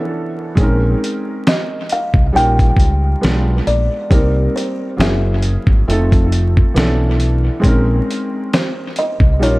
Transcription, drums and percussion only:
0.57 kick loud
0.57 closed hi-hat medium
1.04 closed hi-hat medium
1.47 snare loud
1.47 closed hi-hat medium
1.89 closed hi-hat medium
2.14 kick loud
2.37 closed hi-hat medium
2.59 kick medium
2.59 closed hi-hat medium
2.77 kick medium
2.77 closed hi-hat medium
3.23 snare loud
3.23 closed hi-hat medium
3.67 closed hi-hat medium
4.11 kick loud
4.11 closed hi-hat medium
4.57 closed hi-hat medium
5.00 snare loud
5.00 closed hi-hat medium
5.42 closed hi-hat medium
5.67 kick medium
5.90 closed hi-hat medium
6.12 kick medium
6.12 closed hi-hat soft
6.32 closed hi-hat medium
6.57 kick medium
6.76 snare loud
6.76 closed hi-hat medium
7.20 closed hi-hat medium
7.64 kick loud
7.64 closed hi-hat medium
8.11 closed hi-hat medium
8.53 snare loud
8.53 closed hi-hat medium
8.96 closed hi-hat medium
9.20 kick medium
9.43 closed hi-hat medium

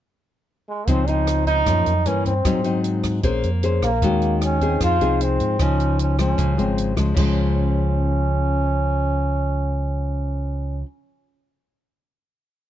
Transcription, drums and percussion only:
0.87 kick medium
0.87 closed hi-hat soft
1.07 closed hi-hat soft
1.27 cross-stick medium
1.27 closed hi-hat soft
1.47 kick soft
1.47 closed hi-hat soft
1.66 kick medium
1.66 cross-stick medium
1.66 closed hi-hat soft
1.86 closed hi-hat soft
2.06 closed hi-hat soft
2.25 kick soft
2.25 closed hi-hat soft
2.45 kick medium
2.45 cross-stick medium
2.45 closed hi-hat soft
2.64 closed hi-hat soft
2.84 closed hi-hat soft
3.04 kick soft
3.04 cross-stick medium
3.04 closed hi-hat soft
3.23 kick medium
3.23 closed hi-hat soft
3.43 closed hi-hat soft
3.63 closed hi-hat soft
3.82 kick soft
3.82 cross-stick medium
3.82 closed hi-hat soft
4.02 kick medium
4.02 closed hi-hat soft
4.22 closed hi-hat soft
4.42 cross-stick medium
4.42 closed hi-hat soft
4.61 kick soft
4.61 closed hi-hat soft
4.81 kick medium
4.81 cross-stick medium
4.81 closed hi-hat soft
5.01 closed hi-hat soft
5.21 closed hi-hat soft
5.40 kick soft
5.40 closed hi-hat soft
5.59 kick medium
5.59 cross-stick medium
5.59 closed hi-hat soft
5.80 closed hi-hat soft
5.99 closed hi-hat soft
6.18 kick soft
6.18 cross-stick medium
6.18 closed hi-hat soft
6.38 kick medium
6.38 closed hi-hat soft
6.59 closed hi-hat soft
6.78 closed hi-hat soft
6.97 kick soft
6.97 cross-stick medium
6.97 closed hi-hat soft
7.17 kick medium
7.17 crash medium

